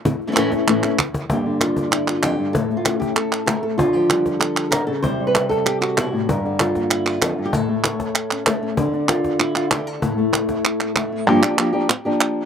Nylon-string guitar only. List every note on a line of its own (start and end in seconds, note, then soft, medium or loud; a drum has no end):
0.05 muted nylon-string guitar stroke medium
0.27 0.31 E3 soft
0.27 0.31 A3 soft
0.27 0.32 C#4 soft
0.27 0.32 E4 soft
0.32 0.36 E3 soft
0.32 0.36 A3 medium
0.32 0.36 C#4 medium
0.32 0.36 E4 medium
0.36 0.51 A2 medium
0.36 0.52 E3 medium
0.36 0.52 A3 medium
0.36 0.52 C#4 medium
0.36 0.50 E4 medium
0.52 0.67 A3 soft
0.52 0.67 C#4 soft
0.52 0.67 E4 soft
0.67 0.82 A2 medium
0.67 0.83 E3 medium
0.67 0.83 A3 medium
0.67 0.83 C#4 medium
0.67 0.81 E4 medium
0.83 0.98 A3 soft
0.83 0.98 C#4 soft
0.83 0.98 E4 soft
0.98 muted nylon-string guitar stroke medium
1.30 2.23 G2 medium
1.30 1.45 D3 soft
1.30 2.54 A#3 soft
1.30 1.76 D4 soft
1.30 1.60 G4 soft
1.46 2.55 D3 medium
1.61 1.91 F4 medium
1.78 2.53 D4 soft
1.91 2.07 E4 medium
2.07 2.22 F4 medium
2.22 2.38 F2 medium
2.22 2.54 G4 medium
2.39 2.54 G2 medium
2.53 3.79 A2 medium
2.53 2.77 A4 medium
2.70 3.47 A3 medium
2.77 2.99 F4 medium
2.87 3.78 C#4 soft
3.00 3.15 G4 medium
3.16 3.62 A4 medium
3.46 3.78 A3 medium
3.46 3.63 A#4 medium
3.63 3.77 A4 medium
3.78 4.72 D3 medium
3.78 4.25 F4 medium
3.93 4.73 F3 soft
3.93 4.39 G4 medium
4.11 5.04 G3 soft
4.40 4.70 A4 medium
4.71 4.89 D3 medium
4.71 4.86 A#4 medium
4.87 5.04 C#3 medium
4.87 5.02 A4 medium
5.02 6.27 C3 medium
5.02 5.20 G3 soft
5.02 5.35 C4 soft
5.02 5.65 E4 soft
5.02 5.26 C5 medium
5.20 6.27 G3 soft
5.27 5.49 B4 medium
5.36 6.27 C4 soft
5.49 5.98 A4 medium
5.66 5.81 G4 medium
5.81 6.28 F#4 medium
5.98 6.13 B2 soft
5.98 6.29 E4 medium
6.13 6.28 A2 soft
6.29 7.22 G2 medium
6.29 6.91 A#4 soft
6.45 7.54 D3 soft
6.60 7.05 F4 medium
6.76 7.52 A#3 soft
6.91 7.38 E4 medium
7.07 7.54 F4 medium
7.22 7.38 F2 soft
7.38 7.53 G2 medium
7.45 7.53 G4 medium
7.53 8.78 A2 medium
7.53 8.16 A4 medium
7.69 8.46 A3 soft
7.84 8.78 C#5 medium
8.32 8.61 C#4 soft
8.47 8.78 A3 medium
8.63 8.76 C#4 soft
8.78 10.03 D3 medium
8.78 9.39 D5 soft
8.93 9.08 D4 soft
9.09 9.54 F4 medium
9.40 9.87 E4 medium
9.55 9.71 F4 medium
9.71 10.00 D4 medium
9.71 9.87 G4 medium
9.87 11.27 A4 medium
10.02 11.27 A2 medium
10.02 10.17 A3 soft
10.02 10.33 E4 soft
10.18 10.95 A3 soft
10.34 10.49 E4 soft
10.50 10.65 E4 soft
10.66 10.80 E4 soft
10.82 11.11 E4 soft
10.96 11.25 A3 medium
11.12 11.26 E4 soft
11.27 11.42 G2 medium
11.27 11.42 D3 medium
11.27 11.42 F3 medium
11.27 11.42 A#3 medium
11.27 11.42 D4 medium
11.27 11.41 G4 medium
11.42 11.56 F3 soft
11.42 11.57 A#3 soft
11.42 11.58 D4 soft
11.42 11.57 G4 soft
11.58 11.73 F3 soft
11.58 11.73 A#3 medium
11.58 11.72 D4 medium
11.58 11.71 G4 medium
11.73 11.88 F3 soft
11.73 11.89 A#3 soft
11.73 11.89 D4 soft
11.73 11.88 G4 medium
11.89 muted nylon-string guitar stroke medium
12.05 12.45 F3 soft
12.05 12.45 A#3 soft
12.05 12.45 D4 medium
12.05 12.45 G4 soft